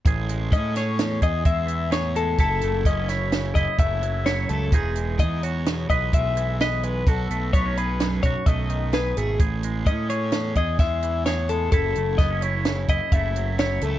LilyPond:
<<
  \new Staff \with { instrumentName = "Clean electric guitar" } { \time 5/4 \key a \lydian \tempo 4 = 129 r4 dis''8 cis''4 dis''8 e''4 cis''8 a'8 | a'4 dis''8 cis''4 dis''8 e''4 cis''8 a'8 | gis'4 dis''8 cis''4 dis''8 e''4 dis''8 b'8 | a'4 cis''8 b'4 cis''8 dis''4 b'8 gis'8 |
r4 dis''8 cis''4 dis''8 e''4 cis''8 a'8 | a'4 dis''8 cis''4 dis''8 e''4 cis''8 a'8 | }
  \new Staff \with { instrumentName = "Clean electric guitar" } { \time 5/4 \key a \lydian << { gis'8 gis8 cis'8 gis'4 gis'8 gis4 gis'8 gis8 | e'8 a8 cis'8 e'4 e'8 a4 e'8 a8 | <e gis dis' gis'>8 gis4 fis'4 b'8 gis4 b'8 gis8 | fis'8 a8 b16 cis'16 gis'4 fis'8 a4 gis'8 a8 |
gis'8 gis8 cis'8 gis'4 gis'8 gis4 gis'8 gis8 | e'8 a8 b16 cis'16 e'4 e'8 a4 e'8 a8 | } \\ { a,2 e,4. e8 a,4 | fis,2 cis4. fis8 fis,4 | e,2 b,4. e8 e,4 | b,2 fis,4. dis8 b,4 |
a,2 e,4. e8 a,4 | fis,2 cis4. fis8 fis,4 | } >> }
  \new Staff \with { instrumentName = "Picked electric bass" } { \clef bass \time 5/4 \key a \lydian a,,4 a,4. e,8 e,2 | fis,,8 fis,,8 fis,,4. fis,,16 r16 fis,,4. cis,8 | e,,4 e,4. b,,8 b,,2 | b,,8 b,,8 b,,4. b,,16 r16 b,,4. gis,,8 |
a,,4 a,4. e,8 e,2 | fis,,8 fis,,8 fis,,4. fis,,16 r16 fis,,4. cis,8 | }
  \new DrumStaff \with { instrumentName = "Drums" } \drummode { \time 5/4 <hh bd>8 hh8 <hh bd>8 <hh sn>8 <hh sn>8 <hh bd>8 <hh bd>8 hh8 <hh sn>8 hh8 | <hh bd>8 hh8 <hh bd>8 <hh sn>8 <hh sn>8 <hh bd>8 <hh bd>8 hh8 <hh sn>8 hh8 | <hh bd>8 hh8 <hh bd>8 hh8 <hh sn>8 <hh bd>8 <hh bd>8 hh8 <hh sn>8 hh8 | <hh bd>8 hh8 <hh bd>8 hh8 <hh sn>8 <hh bd>8 <hh bd>8 hh8 <hh sn>8 hh8 |
<hh bd>8 hh8 <hh bd>8 hh8 <hh sn>8 <hh bd>8 <hh bd sn>8 hh8 <hh sn>8 hh8 | <hh bd>8 hh8 <hh bd sn>8 hh8 <hh sn>8 <hh bd>8 <hh bd>8 hh8 <hh sn>8 hh8 | }
>>